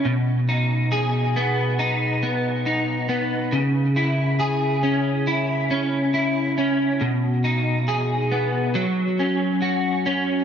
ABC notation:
X:1
M:4/4
L:1/8
Q:1/4=69
K:B
V:1 name="Clean electric guitar"
B,, D G B, D B, D B, | C, E G C E C E C | B,, D G B, F, C F C |]